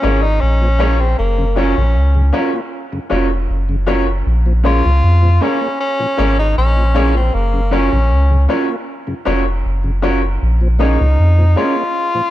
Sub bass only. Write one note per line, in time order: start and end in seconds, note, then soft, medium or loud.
0.04 0.40 G#1 loud
0.42 1.15 A#1 medium
1.19 1.75 F#1 loud
1.77 1.97 A#1 medium
1.96 2.32 C#2 medium
3.11 3.48 F1 medium
3.50 4.23 F#1 medium
4.26 4.82 A#1 loud
4.85 5.02 C#2 medium
5.04 5.40 F2 loud
6.19 6.55 G#1 medium
6.57 7.30 A#1 medium
7.34 7.90 F#1 loud
7.93 8.13 A#1 medium
8.11 8.47 C#2 loud
9.27 9.63 F1 medium
9.65 10.38 F#1 medium
10.42 10.98 A#1 loud
11.01 11.18 C#2 medium
11.19 11.55 F2 loud